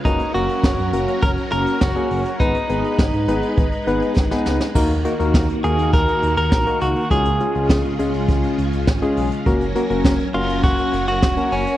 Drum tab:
CC |----------------|----------------|x---------------|----------------|
HH |xxxx-xxxxxxx-xox|xxxx-xxxxxxx----|-xxx-xxxxxxx-xox|xxxx-xxxxxxx-xox|
SD |----o-------o---|----o-------oooo|----o-------o---|----o-------o---|
BD |o---o---o---o---|o---o---o---o---|o---o---o---o---|o---o---o---o---|

CC |----------------|
HH |xxxx-xxxxxxx-xox|
SD |----o-------o---|
BD |o---o---o---o---|